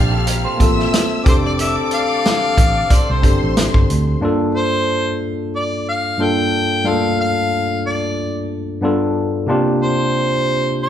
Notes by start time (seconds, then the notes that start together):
Already playing: A#1 D3 G3 A#3 C4 D4 F4 G4 F5 A5 F6
0.11 F4 A4
0.27 G4 A#4, closed hi-hat
0.45 A4 C5
0.58 A1 A#3 C4 F4 E5 E6, kick, closed hi-hat
0.62 A4
0.79 snare
0.93 snare, closed hi-hat
1.24 F1 D3 A3 C4 D4 G4 A4 C5 D5 D6, kick, closed hi-hat
1.28 A4
1.46 D5
1.59 E5, closed hi-hat
1.91 F5, closed hi-hat
2.25 snare, closed hi-hat
2.58 A1, kick, closed hi-hat
2.90 C5 D5 C6, kick, closed hi-hat
3.10 C2 C5
3.22 G1 C4 D4 G4, kick, closed hi-hat
3.26 A4
3.42 A1
3.57 snare, closed hi-hat
3.74 G1, kick
3.90 D2, closed hi-hat
4.20 G2 A#3 D4 F4
4.25 A4
4.55 C5
5.55 D5
5.88 F5
6.17 G2 A#3 D4 F4
6.21 A4 G5
6.84 G2 A3 D4 F4
6.88 A#3 A4 F5
7.21 F5
7.86 D5
8.81 G2 B3 D4 F4 A4
9.47 C3 A#3 D4 F4 G4
9.82 C5
10.83 D5